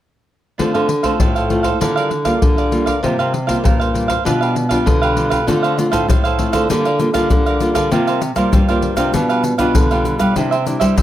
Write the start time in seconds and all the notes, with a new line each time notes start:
0.58 D3 A3 C4 D4 F4 A4 C5 F5, pandeiro, surdo
0.74 D3 A4 C5 F5, pandeiro
0.89 muted cavaquinho stroke, pandeiro
1.03 A3 C4 F4 A4 C5 F5, pandeiro, surdo
1.20 A2 D4 A4 C5 F5, pandeiro, surdo
1.35 A4 C5 F5, pandeiro
1.50 A3 C4 F4, pandeiro, surdo
1.63 A4 C5 F5, pandeiro, surdo
1.80 D3 G3 A#3 F4 G4 A#4 D5 F5, pandeiro, surdo
1.96 A#4 D5 F5, pandeiro
2.10 muted cavaquinho stroke, pandeiro
2.25 G3 A#3 F4 A#4 D5 F5, pandeiro, surdo
2.42 D3, pandeiro, surdo
2.57 A#4 D5 F5, pandeiro
2.71 G3 A#3 F4, pandeiro
2.86 A#4 D5 F5, pandeiro, surdo
3.03 C3 G3 A#3 F4 A#4 C5 F5, pandeiro, surdo
3.19 C3 A#4 C5 F5, pandeiro
3.33 muted cavaquinho stroke, pandeiro
3.47 G3 A#3 F4 A#4 C5 F5, pandeiro, surdo
3.64 G2 A#2 F4 A#4 C5 F5, pandeiro, surdo
3.80 A#4 C5 F5, pandeiro
3.94 G3 A#3 F4, pandeiro
4.08 A#4 C5 F5, pandeiro, surdo
4.25 B2 G3 D4 F4 G4 B4 F5, pandeiro, surdo
4.41 G4 B4 F5, pandeiro
4.55 muted cavaquinho stroke, pandeiro
4.69 G3 D4 F4 G4 B4 F5, pandeiro, surdo
4.86 B2 D3, pandeiro, surdo
5.02 G4 B4 F5, pandeiro
5.16 G3 D4 F4, pandeiro
5.30 G4 B4 F5, pandeiro, surdo
5.47 D3 A3 C4 D4 F4 A4 C5 F5, pandeiro, shaker, surdo
5.63 A4 C5 F5, pandeiro, shaker
5.77 A3 C4 F4, muted cavaquinho stroke, pandeiro, shaker
5.91 A2 A4 C5 F5, pandeiro, shaker, surdo
6.08 A2 D4 A4 C5 F5, pandeiro, shaker, surdo
6.24 A4 C5 F5, pandeiro, shaker
6.38 A3 C4 F4, pandeiro, surdo
6.53 D3 A4 C5 F5, pandeiro, shaker, surdo
6.69 D3 G3 A#3 F4 G4 A#4 D5 F5, pandeiro, shaker, surdo
6.85 A#4 D5 F5, pandeiro, shaker
6.99 G3 A#3 F4, muted cavaquinho stroke, pandeiro, shaker
7.14 D3 G3 A#3 F4 A#4 D5 F5, pandeiro, shaker, surdo
7.30 D3, pandeiro, shaker, surdo
7.46 A#4 D5 F5, pandeiro, shaker
7.60 G3 A#3 F4, pandeiro, shaker
7.75 D3 A#4 D5 F5, pandeiro, shaker, surdo
7.92 C3 G3 A#3 F4 A#4 C5 F5, pandeiro, shaker, surdo
8.07 A#4 C5 F5, pandeiro, shaker
8.21 muted cavaquinho stroke, pandeiro, shaker
8.36 G3 A#3 F4 A#4 C5 F5, pandeiro, shaker, surdo
8.52 G2 G3 F4 A#4 C5 F5, pandeiro, shaker, surdo
8.68 G3 A#3 F4 A#4 C5 F5, pandeiro, shaker
8.82 pandeiro
8.97 C3 G3 D4 F4 A#4 C5 F5, pandeiro, shaker, surdo
9.14 B2 D4 G4 B4 F5, pandeiro, shaker, surdo
9.29 G4 B4 F5, pandeiro, shaker
9.44 muted cavaquinho stroke, pandeiro, shaker
9.58 B2 G3 D4 F4 G4 B4 F5, pandeiro, shaker, surdo
9.75 B2 D3, pandeiro, shaker, surdo
9.91 G3 D4 F4 G4 B4 F5, pandeiro, shaker
10.05 pandeiro, shaker
10.19 G3 G4 B4 F5, pandeiro, shaker, surdo
10.35 C3 G3 D4 E4 G4 C5 E5, pandeiro, shaker, surdo
10.51 G4 C5 E5, pandeiro, shaker
10.65 G3 D4 E4, muted cavaquinho stroke, pandeiro, shaker
10.80 G3 G4 C5 E5, pandeiro, shaker, surdo
10.96 G3 D4 G4 C5 E5, pandeiro, shaker, surdo